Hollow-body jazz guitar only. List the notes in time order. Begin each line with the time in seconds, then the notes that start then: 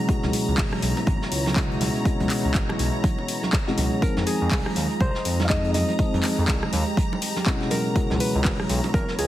4.02 A#4
4.27 G#4
5.01 C5
5.45 F5
5.50 D#5
5.74 D#5
7.71 A#4
8.20 B4
8.94 A#4
9.19 G#4